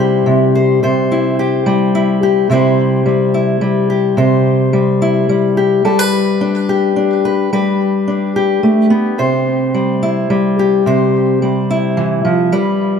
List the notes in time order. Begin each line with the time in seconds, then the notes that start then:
Already playing: C3 G3 E4 C5
0.00 G4
0.26 C3
0.55 C5
0.83 C3 C5
1.12 E4
1.39 G4
1.66 G3
1.95 E4
2.23 G4
2.50 C3 G3 E4 G4 C5
3.06 G3
3.34 E4
3.61 G3
3.90 G4
4.17 C3 C5
4.73 G3
5.02 E4
5.29 G3
5.57 G4
5.85 G3 A4
5.99 B4
6.41 D4
6.69 G4
6.96 D4
7.25 B4
7.53 G3 B4
8.08 D4
8.36 G4
8.63 A3
8.90 B3
9.18 C3 C5
9.74 G3
10.03 E4
10.30 G3
10.59 G4
10.86 C3 C5
11.42 G3
11.70 E4
11.97 E3
12.25 F3
12.52 G3 B4